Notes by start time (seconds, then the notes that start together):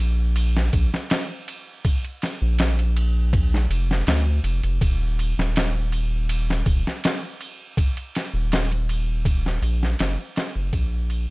Already playing: A#1
0.36 ride
0.57 snare
0.73 A#1, kick, ride
0.94 snare
1.10 snare, ride
1.48 ride
1.85 kick, ride
2.04 ride
2.22 snare, ride
2.42 A#1
2.59 snare, ride
2.79 ride
2.97 ride
3.33 kick, ride
3.54 snare
3.70 F1, ride
3.91 snare
4.07 D2, snare, ride
4.44 F1, ride
4.63 F1, ride
4.81 D#1, kick, ride
5.19 ride
5.38 D#1, snare
5.56 snare, ride
5.92 ride
6.29 ride
6.50 snare
6.66 D#1, kick, ride
6.87 snare
7.04 snare, ride
7.41 ride
7.77 kick, ride
7.97 ride
8.15 snare, ride
8.34 D#1
8.52 snare, ride
8.72 ride
8.89 ride
9.25 kick, ride
9.46 snare
9.62 A#1, ride
9.83 snare
9.99 F#1, snare, ride
10.36 snare, ride
10.56 F#1
10.73 A#1, kick, ride
11.10 ride